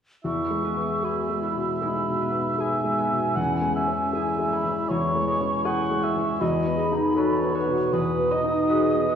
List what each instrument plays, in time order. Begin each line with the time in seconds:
0.24 felt piano E2, harp E3, clarinet E4, cor anglais E5, flute C#6
0.50 felt piano G#3
0.63 harp B3, clarinet G#4
0.77 felt piano B3
1.03 clarinet F#4, felt piano G#4, harp G#4, flute B5
1.30 felt piano G#3
1.42 harp B3, clarinet E4
1.55 felt piano B2
1.82 felt piano G#3, harp G#3, clarinet D#4, flute B5
2.07 felt piano B2
2.21 harp B3
2.32 felt piano B3
2.58 felt piano G#4, harp G#4, flute G#5
2.84 felt piano G#3
2.99 harp B3
3.11 felt piano B2
3.36 felt piano E2, harp E3, clarinet C#4, cor anglais F#5
3.62 felt piano G#3
3.76 harp C#4, cor anglais E5
3.88 felt piano C#4
4.13 clarinet E4, felt piano G#4, harp G#4, flute G#5
4.39 felt piano G#3
4.53 harp C#4, flute B5
4.65 felt piano E3
4.89 felt piano E2, harp E3, cor anglais C#5, flute C#6
5.15 felt piano G#3
5.27 harp G#3, cor anglais C#5
5.41 felt piano C#4
5.65 harp G#4, felt piano G#4, cor anglais F#5, flute C#6
5.91 felt piano G#3
6.03 harp C#4, cor anglais E5
6.16 felt piano E3
6.40 felt piano E2, harp E3, clarinet F#4, cor anglais D#5, flute B5
6.67 felt piano B3
6.77 harp D#4, clarinet G#4
6.92 felt piano D#4
7.15 felt piano F#4, clarinet A4, harp B4, cor anglais C#5
7.42 felt piano B3
7.54 harp F#4, clarinet B4
7.68 felt piano B2
7.93 felt piano E2, harp E3, cor anglais B4, flute D#6
8.19 felt piano B3
8.31 harp D#4, cor anglais D#5
8.44 felt piano D#4
8.69 felt piano F#4, clarinet G#4, harp B4
8.95 felt piano B3
9.08 clarinet F#4, harp F#4